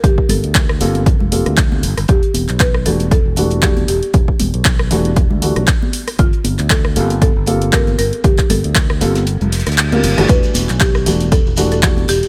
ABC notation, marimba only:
X:1
M:4/4
L:1/16
Q:"Swing 16ths" 1/4=117
K:Em
V:1 name="Marimba"
G2 A12 z2 | G4 B2 A2 A4 G2 G2- | G8- G2 z6 | =F4 A4 A4 _B2 B2 |
G2 A12 z2 | B4 G4 A3 A3 G2 |]